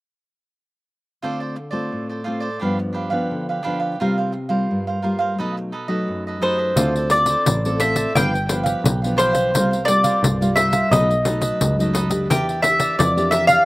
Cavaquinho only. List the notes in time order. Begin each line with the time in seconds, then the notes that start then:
1.22 F4 A4 C5 D5
1.40 A4 C5 D5
1.56 muted cavaquinho stroke
1.71 A4 C5 D5
2.09 A4 C5 D5
2.24 F4 A4 C5 D5
2.40 A4 C5 D5
2.60 D4 G4 B4 F5
2.79 muted cavaquinho stroke
2.93 D4 G4 B4 F5
3.10 G4 B4 F5
3.49 G4 B4 F5
3.63 D4 G4 B4 F5
3.80 G4 B4 F5
4.00 F4 A#4 C5 F5
4.18 A#4 C5 F5
4.32 muted cavaquinho stroke
4.49 A#4 C5 F5
4.87 A#4 C5 F5
5.02 F4 A#4 C5 F5
5.19 A#4 C5 F5
5.38 D#4 A4 B4 D#5
5.57 muted cavaquinho stroke
5.72 D#4 A4 B4 D#5
5.88 A4 B4 D#5
6.27 A4 B4 D#5
6.42 D#4 A4 B4 D#5
6.58 A4 B4 D#5
6.77 F4 A4 C5 D5
6.96 A4 C5 D5
7.11 muted cavaquinho stroke
7.27 A4 C5 D5
7.65 A4 C5 D5
7.80 F4 A4 C5 D5
7.96 A4 C5 D5
8.16 D4 G4 B4 F5
8.33 muted cavaquinho stroke
8.48 D4 G4 B4 F5
8.63 G4 B4 F5
9.02 G4 B4 F5
9.17 D4 G4 B4 F5
9.33 G4 B4 F5
9.54 F4 A#4 C5 F5
9.71 A#4 C5 F5
9.88 muted cavaquinho stroke
10.04 A#4 C5 F5
10.42 A#4 C5 F5
10.57 F4 A#4 C5 F5
10.72 A#4 C5 F5
10.92 D#4 A4 B4 D#5
11.10 muted cavaquinho stroke
11.25 D#4 A4 B4 D#5
11.41 A4 B4 D#5
11.81 A4 B4 D#5
11.94 D#4 A4 B4 D#5
12.09 A4 B4 D#5
12.30 G4 A#4 D5 E5
12.49 A#4 D5 E5
12.63 muted cavaquinho stroke
12.80 A#4 D5 E5
13.18 A#4 D5 E5
13.33 G4 A#4 D5 E5
13.49 A#4 D5 E5